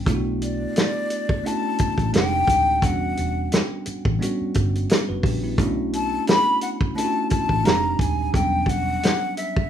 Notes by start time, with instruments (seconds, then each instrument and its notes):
0.06 fingered electric bass B1, tine electric piano A3 B3 D4 E4 F4, kick, closed hi-hat
0.15 tine electric piano F#4
0.42 flute D5, closed hi-hat
0.76 snare, closed hi-hat
1.10 closed hi-hat
1.29 kick
1.44 tine electric piano A3 C#4 D4 E4 F#4, flute A5, closed hi-hat
1.78 muted fingered electric bass stroke, kick, closed hi-hat
1.98 fingered electric bass A1, kick, closed hi-hat
2.13 fingered electric bass F1, tine electric piano G#3 C4 D4 D#4 G4, flute G5, snare, closed hi-hat
2.48 fingered electric bass D#1, kick, closed hi-hat
2.82 fingered electric bass E1, tine electric piano G3 B3 C#4 D4 F#4, flute F#5, kick, closed hi-hat
3.17 fingered electric bass E1, closed hi-hat
3.52 snare, closed hi-hat
3.86 muted fingered electric bass stroke, closed hi-hat
4.05 fingered electric bass A1, kick
4.19 tine electric piano G3 B3 C#4 D4 F#4, closed hi-hat
4.41 muted fingered electric bass stroke
4.54 fingered electric bass G1, kick, closed hi-hat
4.75 closed hi-hat
4.89 snare, closed hi-hat
5.09 fingered electric bass F#1, tine electric piano F#4 B4
5.23 fingered electric bass A#1, tine electric piano D4 G4, kick, open hi-hat
5.44 tine electric piano B3 E4
5.58 fingered electric bass B1, tine electric piano A3 C#4 D4 E4 F#4, kick, closed hi-hat
5.93 flute A5, closed hi-hat
6.27 flute B5, snare, closed hi-hat
6.61 flute F#5, closed hi-hat
6.81 kick
6.95 tine electric piano A3 C#4 D4 E4 F4, flute A5, closed hi-hat
7.04 tine electric piano F#4
7.30 flute A5, muted fingered electric bass stroke, kick, closed hi-hat
7.49 fingered electric bass A1, kick
7.64 fingered electric bass F1, tine electric piano G#3 C4 D4 D#4 G4, flute A#5, snare, closed hi-hat
7.99 fingered electric bass D#1, flute G#5, kick, closed hi-hat
8.33 fingered electric bass E1, tine electric piano F#3 G3 B3 C#4 D4, flute G5, kick, closed hi-hat
8.66 fingered electric bass E1, flute F#5, kick, closed hi-hat
9.03 snare, closed hi-hat
9.37 flute E5, closed hi-hat
9.56 kick